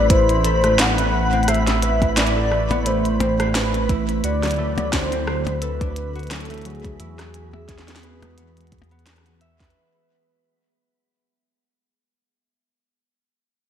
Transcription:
0.00 4.21 A1 medium
0.00 0.63 A3 medium
0.00 7.00 A3 medium
0.00 7.97 E4 medium
0.00 0.36 G#4 medium
0.00 1.39 B4 medium
0.00 5.24 B5 medium
0.00 9.77 B5 medium
0.10 2.01 E4 medium
0.10 0.81 C5 loud
0.10 kick loud
0.10 closed hi-hat medium
0.29 closed hi-hat soft
0.44 2.36 A4 medium
0.44 closed hi-hat medium
0.64 0.98 A3 medium
0.64 cross-stick soft
0.64 closed hi-hat soft
0.79 1.39 B3 loud
0.79 1.50 F#5 loud
0.79 snare loud
0.79 closed hi-hat medium
0.98 2.51 A3 medium
0.98 closed hi-hat soft
1.33 1.89 C4 medium
1.33 closed hi-hat soft
1.43 closed hi-hat soft
1.48 1.89 C5 medium
1.48 2.17 E5 loud
1.48 cross-stick medium
1.48 closed hi-hat medium
1.54 closed hi-hat soft
1.67 snare medium
1.67 closed hi-hat soft
1.82 3.26 B4 medium
1.82 closed hi-hat medium
2.02 3.89 E4 medium
2.02 kick loud
2.02 closed hi-hat soft
2.02 percussion blips medium
2.17 2.88 D5 loud
2.17 snare loud
2.17 closed hi-hat medium
2.27 closed hi-hat soft
2.36 4.56 A4 medium
2.51 2.86 A3 medium
2.51 cross-stick medium
2.71 3.26 B3 loud
2.71 closed hi-hat soft
2.71 percussion blips medium
2.86 4.58 A3 medium
2.86 3.55 C5 loud
2.86 closed hi-hat medium
3.05 closed hi-hat soft
3.20 3.80 C4 medium
3.20 closed hi-hat medium
3.20 percussion blips loud
3.40 3.80 C5 medium
3.40 cross-stick medium
3.40 closed hi-hat soft
3.55 4.05 B4 loud
3.55 snare loud
3.55 closed hi-hat medium
3.74 5.18 B4 medium
3.74 closed hi-hat soft
3.89 6.51 E4 medium
3.89 kick loud
3.89 closed hi-hat medium
4.09 closed hi-hat soft
4.24 6.97 D2 medium
4.24 7.00 D3 medium
4.24 6.15 F#4 medium
4.24 4.94 D5 loud
4.24 closed hi-hat medium
4.43 4.77 F#3 medium
4.43 cross-stick medium
4.43 snare medium
4.43 closed hi-hat soft
4.45 closed hi-hat soft
4.47 closed hi-hat soft
4.50 closed hi-hat soft
4.50 closed hi-hat medium
4.52 closed hi-hat soft
4.56 6.50 A3 loud
4.56 closed hi-hat soft
4.78 6.30 F#3 medium
4.78 closed hi-hat soft
4.78 percussion blips loud
4.93 5.64 C5 loud
4.93 kick loud
4.93 snare loud
4.93 closed hi-hat medium
5.04 9.75 F#4 medium
5.12 8.09 C4 medium
5.12 closed hi-hat soft
5.27 7.25 C5 medium
5.27 cross-stick medium
5.47 closed hi-hat soft
5.47 percussion blips medium
5.62 7.25 A4 medium
5.62 6.32 B4 loud
5.62 closed hi-hat medium
5.81 8.61 D4 medium
5.81 kick loud
5.81 closed hi-hat soft
5.96 closed hi-hat medium
6.16 8.59 F#4 medium
6.16 closed hi-hat soft
6.19 closed hi-hat soft
6.23 closed hi-hat soft
6.27 6.64 F#3 medium
6.27 6.67 A4 loud
6.27 cross-stick medium
6.27 snare loud
6.27 closed hi-hat soft
6.31 closed hi-hat medium
6.36 closed hi-hat soft
6.41 closed hi-hat soft
6.45 closed hi-hat soft
6.50 7.25 A3 loud
6.50 closed hi-hat soft
6.54 closed hi-hat soft
6.58 closed hi-hat soft
6.62 7.05 F#3 medium
6.62 9.07 G#4 loud
6.62 closed hi-hat soft
6.65 closed hi-hat medium
6.70 closed hi-hat soft
6.75 closed hi-hat soft
6.80 closed hi-hat soft
6.85 kick loud
6.85 closed hi-hat soft
7.00 9.73 E2 medium
7.00 9.75 E3 medium
7.00 9.61 E4 medium
7.00 closed hi-hat medium
7.17 9.76 B3 medium
7.17 8.69 G#5 medium
7.17 cross-stick medium
7.17 snare medium
7.17 closed hi-hat soft
7.24 9.75 G#4 medium
7.34 closed hi-hat medium
7.53 9.26 E5 medium
7.53 percussion blips loud
7.69 9.96 G#4 medium
7.69 kick loud
7.69 snare soft
7.69 closed hi-hat loud
7.78 snare medium
7.88 snare medium
7.88 closed hi-hat soft
7.96 snare loud
8.03 9.60 B4 medium
8.03 closed hi-hat soft
8.22 8.56 G#3 medium
8.22 cross-stick medium
8.22 closed hi-hat soft
8.22 percussion blips medium
8.38 8.91 B3 loud
8.38 closed hi-hat medium
8.57 9.81 G#3 medium
8.57 closed hi-hat soft
8.61 closed hi-hat soft
8.67 closed hi-hat soft
8.72 kick loud
8.72 closed hi-hat medium
8.79 closed hi-hat soft
8.79 percussion blips loud
8.84 closed hi-hat soft
8.91 9.26 B3 loud
8.91 closed hi-hat soft
8.99 closed hi-hat soft
9.06 cross-stick soft
9.06 snare loud
9.06 closed hi-hat medium
9.13 cross-stick medium
9.13 closed hi-hat soft
9.18 cross-stick medium
9.26 12.37 B3 medium
9.26 closed hi-hat soft
9.41 11.13 E5 loud
9.41 closed hi-hat medium
9.60 11.65 B4 loud
9.60 kick loud
9.60 snare medium
9.60 closed hi-hat soft
9.64 closed hi-hat soft
9.70 closed hi-hat soft

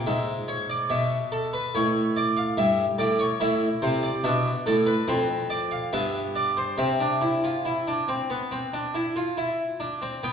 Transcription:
0.07 0.88 G#2 medium
0.07 0.33 E5 medium
0.48 0.69 C#5 medium
0.70 0.90 D5 medium
0.90 1.71 B2 medium
0.90 1.16 E5 medium
1.32 1.52 A4 medium
1.53 1.74 B4 medium
1.75 2.55 A2 medium
1.75 2.00 C#5 medium
2.17 2.36 D5 medium
2.37 2.57 F5 medium
2.57 2.83 G2 medium
2.57 2.83 E5 medium
2.98 3.24 A2 medium
2.98 3.19 D5 medium
3.19 3.40 C#5 medium
3.40 3.66 A2 medium
3.40 4.22 E4 medium
3.40 3.67 E5 medium
3.82 4.08 C3 medium
3.82 4.02 C5 medium
4.03 4.23 D5 medium
4.24 4.50 B2 medium
4.24 5.06 D4 medium
4.24 4.50 E5 medium
4.66 4.92 A2 medium
4.66 4.87 A4 medium
4.86 5.07 B4 medium
5.08 5.90 F2 medium
5.08 5.90 C4 medium
5.08 5.34 C5 medium
5.50 5.71 D5 medium
5.71 5.92 F5 medium
5.93 6.76 G2 medium
5.93 6.76 B3 medium
5.93 6.19 E5 medium
6.35 6.56 D5 medium
6.57 6.78 C5 medium
6.78 9.76 C3 medium
6.78 6.99 C4 medium
6.78 9.76 E5 medium
7.00 7.21 D4 medium
7.21 7.42 E4 medium
7.44 7.65 F4 medium
7.65 7.86 E4 medium
7.87 8.08 D4 medium
8.08 8.29 C4 medium
8.30 8.51 B3 medium
8.51 8.72 C4 medium
8.73 8.94 D4 medium
8.95 9.15 E4 medium
9.16 9.37 F4 medium
9.37 9.64 E4 medium
9.80 10.01 D4 medium
10.02 10.23 C4 medium
10.23 10.33 B3 medium
10.23 10.33 G5 medium

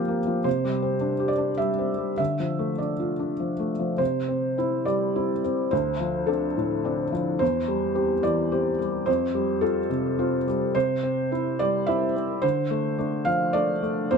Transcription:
0.00 0.42 A#2 soft
0.00 0.27 F3 soft
0.00 0.08 A#3 soft
0.00 0.48 C4 soft
0.00 0.17 F4 soft
0.00 0.49 G4 medium
0.00 0.48 A#4 medium
0.08 0.38 A#3 soft
0.27 0.46 F3 soft
0.44 2.15 C3 medium
0.44 1.29 C5 medium
0.65 0.94 G3 soft
0.83 1.13 C4 soft
1.01 1.31 D4 soft
1.20 1.51 G4 soft
1.28 1.58 D5 medium
1.38 1.70 D4 soft
1.58 1.91 G3 soft
1.58 2.16 E5 medium
1.79 2.11 C4 soft
1.98 2.19 G3 soft
2.18 3.96 D3 soft
2.18 2.79 E5 medium
2.40 2.72 F3 soft
2.59 2.92 A3 soft
2.78 3.12 D4 soft
2.78 3.70 D5 soft
3.00 3.32 F4 soft
3.19 3.52 D4 soft
3.40 3.72 F3 soft
3.60 3.92 A3 soft
3.79 3.99 F3 soft
3.98 5.68 C3 soft
3.98 4.86 C5 medium
4.28 4.56 C4 soft
4.58 4.84 C4 soft
4.58 4.84 E4 soft
4.85 5.32 G3 soft
4.85 5.72 D5 medium
5.16 5.41 C4 soft
5.16 5.41 E4 soft
5.44 5.72 C4 soft
5.71 7.37 D2 soft
5.71 6.28 C5 medium
6.00 6.45 F3 soft
6.27 6.54 C4 soft
6.27 6.54 D4 soft
6.27 7.12 A4 medium
6.57 7.02 A2 soft
6.84 7.10 C4 soft
6.84 7.11 D4 soft
7.12 7.41 F3 soft
7.39 9.03 E2 soft
7.39 8.24 C5 medium
7.68 8.13 G3 soft
7.95 8.21 C4 soft
7.95 8.21 G4 soft
8.23 8.69 E3 soft
8.23 9.07 D5 medium
8.52 8.77 C4 soft
8.52 8.77 G4 soft
8.79 9.07 G3 soft
9.06 10.71 F2 medium
9.06 9.62 C5 medium
9.35 9.79 G3 soft
9.61 9.88 C4 soft
9.61 9.88 F4 soft
9.61 10.46 A4 medium
9.90 10.35 C3 soft
10.19 10.44 C4 soft
10.19 10.44 F4 soft
10.47 10.75 G3 soft
10.75 12.39 C3 medium
10.75 11.59 C5 medium
11.03 11.30 C4 soft
11.31 11.57 C4 soft
11.31 11.57 E4 soft
11.59 12.05 G3 soft
11.59 11.87 D5 medium
11.87 12.13 C4 soft
11.87 12.13 E4 soft
11.87 12.43 E5 medium
12.16 12.43 C4 soft
12.42 14.08 D3 medium
12.42 13.26 C5 medium
12.70 12.97 A3 soft
12.98 13.24 A3 soft
12.98 13.24 D4 soft
13.25 13.72 F3 soft
13.25 13.54 F5 medium
13.53 13.80 A3 soft
13.53 13.80 D4 soft
13.53 14.11 D5 medium
13.83 14.12 A3 soft
14.11 14.18 E2 soft
14.11 14.18 C5 medium

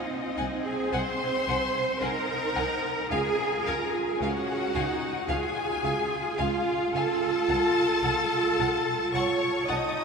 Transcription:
0.00 2.02 C4 medium
0.00 0.65 D#4 medium
0.00 0.65 D#5 medium
0.36 0.46 C2 medium
0.36 0.45 F#5 medium
0.36 0.44 G#5 medium
0.65 0.93 G#4 loud
0.65 0.93 G#5 medium
0.92 1.00 C2 medium
0.92 2.00 C5 loud
0.92 1.00 F#5 medium
0.92 1.00 G#5 medium
0.92 2.02 C6 loud
1.47 1.55 C2 medium
1.47 1.55 F#5 medium
1.47 1.55 G#5 medium
2.01 2.10 C2 medium
2.01 3.11 D#4 medium
2.01 3.11 A#4 loud
2.01 2.09 F#5 medium
2.01 2.09 G#5 medium
2.01 3.11 A#5 medium
2.55 2.65 C2 medium
2.55 2.63 F#5 medium
2.55 2.63 G#5 medium
3.10 3.19 C#2 medium
3.10 4.19 F4 medium
3.10 3.64 G#4 loud
3.10 3.19 F5 medium
3.10 3.19 G#5 medium
3.10 3.65 G#5 loud
3.66 3.74 C#2 medium
3.66 3.93 A#4 loud
3.66 3.74 F5 medium
3.66 3.74 G#5 medium
3.66 3.94 A#5 medium
3.93 4.20 G#4 medium
3.93 4.20 G#5 medium
4.20 4.28 C#2 medium
4.20 4.74 C#4 medium
4.20 5.28 F#4 loud
4.20 4.30 F5 medium
4.20 5.29 F#5 loud
4.20 4.30 G#5 medium
4.74 4.83 C#2 medium
4.74 5.28 D#4 medium
4.74 4.83 F5 medium
4.74 4.82 G#5 medium
5.28 5.36 C#2 medium
5.28 9.69 F4 loud
5.28 6.35 G#4 loud
5.28 5.37 F5 medium
5.28 5.36 G#5 medium
5.28 6.38 G#5 loud
5.84 5.92 C#2 medium
5.84 5.92 F5 medium
5.84 5.92 G#5 medium
6.38 6.47 C#2 medium
6.38 6.93 F4 loud
6.38 6.46 F5 medium
6.38 6.93 F5 medium
6.38 6.46 G#5 medium
6.93 7.02 C#2 medium
6.93 9.14 A4 loud
6.93 7.03 F5 medium
6.93 7.03 G#5 medium
6.93 9.10 A5 loud
7.49 7.57 C2 medium
7.49 7.57 F#5 medium
7.49 7.57 A5 medium
8.03 8.11 C2 medium
8.03 8.11 F#5 medium
8.03 8.12 A5 medium
8.59 8.67 C2 medium
8.59 8.68 F#5 medium
8.59 8.67 A5 medium
9.14 9.22 C2 medium
9.14 9.68 C#5 loud
9.14 9.22 F#5 medium
9.14 9.22 A5 medium
9.14 9.69 C#6 medium
9.68 9.77 C2 medium
9.68 10.04 D#4 medium
9.68 10.04 D#5 loud
9.68 9.76 F#5 medium
9.68 9.76 A5 medium
9.68 10.04 D#6 loud

